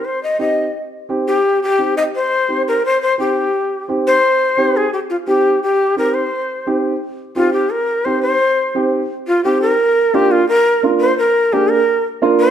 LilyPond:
<<
  \new Staff \with { instrumentName = "Shakuhachi" } { \time 4/4 \key c \minor \tempo 4 = 172 c''8 ees''8 ees''4 r4. g'8~ | g'8 g'4 ees''8 c''4. bes'8 | c''8 c''8 g'2 r8 c''8~ | c''4. aes'8 g'8 f'8 g'4 |
g'4 bes'8 c''2 r8 | r4 f'8 g'8 bes'4 c''8 c''8~ | c''4. r4 f'8 g'8 bes'8~ | bes'4 g'8 f'8 bes'4 r8 c''8 |
bes'4 g'8 bes'4 r4 c''8 | }
  \new Staff \with { instrumentName = "Upright piano" } { \time 4/4 \key c \minor r4 <c' ees' g'>8 r4. <c' ees' g'>8 r8 | r4 <c' ees' g'>8 r4. <c' ees' g'>8 r8 | r4 <c' ees' g'>8 r4. <c' ees' g'>8 r8 | r4 <c' ees' g'>8 r4. <c' ees' g'>8 r8 |
r4 <c' ees' g'>8 r4. <c' ees' g'>8 r8 | r4 <c' ees' g'>8 r4. <c' ees' g'>8 r8 | r4 <c' ees' g'>8 r4. <c' ees' g'>8 r8 | r4 <bes d' f'>8 r4. <bes d' f'>8 r8 |
r4 <bes d' aes'>8 r4. <bes d' f'>8 r8 | }
>>